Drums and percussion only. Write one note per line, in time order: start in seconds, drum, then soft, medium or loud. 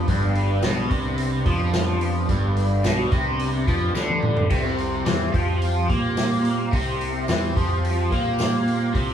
0.08 kick medium
0.08 open hi-hat medium
0.35 open hi-hat medium
0.62 snare loud
0.62 open hi-hat medium
0.62 tambourine medium
0.91 kick loud
0.91 open hi-hat medium
1.18 open hi-hat medium
1.46 kick loud
1.46 open hi-hat medium
1.73 snare loud
1.73 open hi-hat medium
1.73 tambourine loud
2.01 open hi-hat medium
2.29 kick medium
2.29 open hi-hat medium
2.56 open hi-hat medium
2.84 snare loud
2.84 open hi-hat medium
2.84 tambourine medium
3.12 kick loud
3.12 open hi-hat medium
3.39 open hi-hat medium
3.67 kick loud
3.67 open hi-hat medium
3.95 snare medium
3.95 tambourine loud
4.09 high tom medium
4.22 mid tom medium
4.37 floor tom medium
4.50 kick loud
4.50 open hi-hat medium
4.50 crash medium
4.78 open hi-hat medium
5.06 snare loud
5.06 open hi-hat medium
5.06 tambourine medium
5.34 kick loud
5.34 open hi-hat medium
5.62 open hi-hat medium
5.89 kick loud
5.89 open hi-hat medium
6.17 snare loud
6.17 open hi-hat medium
6.17 tambourine loud
6.45 open hi-hat medium
6.73 kick loud
6.73 open hi-hat medium
7.01 open hi-hat medium
7.28 snare loud
7.28 open hi-hat medium
7.28 tambourine medium
7.56 kick loud
7.56 open hi-hat medium
7.85 open hi-hat medium
8.12 kick loud
8.12 open hi-hat medium
8.39 snare loud
8.39 open hi-hat medium
8.39 tambourine loud
8.68 open hi-hat medium
8.95 kick loud
8.95 open hi-hat medium